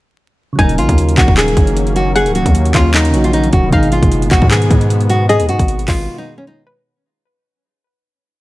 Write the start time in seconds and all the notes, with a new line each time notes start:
0.53 C#3 F#3
0.58 D#1 D#3 F#3 A#3 C#4 D#4 G#5, kick, closed hi-hat
0.64 A#4
0.69 closed hi-hat
0.78 A#1 F4, closed hi-hat
0.89 D#2, kick, closed hi-hat
0.98 closed hi-hat
1.09 closed hi-hat
1.17 A#1 F#4, kick, clap, closed hi-hat
1.28 D#1, kick
1.37 G#4, clap, closed hi-hat
1.48 closed hi-hat
1.57 F#1, kick, closed hi-hat
1.67 closed hi-hat
1.77 closed hi-hat
1.87 closed hi-hat
1.96 F#4, closed hi-hat
2.16 G#4 F#5, closed hi-hat
2.26 C#1, closed hi-hat
2.35 F#4, closed hi-hat
2.46 D#2, kick, closed hi-hat
2.55 closed hi-hat
2.65 closed hi-hat
2.74 D#2 F4, kick, clap, closed hi-hat
2.94 D#4, clap, closed hi-hat
3.05 closed hi-hat
3.11 A#1 C#3 F#3 A#3, closed hi-hat
3.15 D#4 F#4
3.24 F4, closed hi-hat
3.33 D#4, closed hi-hat
3.44 closed hi-hat
3.53 D#1 F#4, kick, closed hi-hat
3.66 B2 D#3
3.72 G#1 G#3 B3 D#4 F5, kick, closed hi-hat
3.78 G#4
3.83 closed hi-hat
3.92 F4, closed hi-hat
4.03 F#1, kick, closed hi-hat
4.12 closed hi-hat
4.22 closed hi-hat
4.31 G#1 F#4, kick, clap, closed hi-hat
4.42 G#2, kick
4.51 G#4, clap, closed hi-hat
4.62 closed hi-hat
4.71 G#2, kick, closed hi-hat
4.81 closed hi-hat
4.90 closed hi-hat
5.01 closed hi-hat
5.10 F#4, closed hi-hat
5.29 G#4 D#5, closed hi-hat
5.40 D#2, closed hi-hat
5.49 G#2 F#4, closed hi-hat
5.59 G#1, kick, closed hi-hat
5.68 closed hi-hat
5.79 closed hi-hat
5.88 G#1 F4, kick, clap, open hi-hat
6.18 D#4
6.38 C#4
6.47 D#4
6.67 B4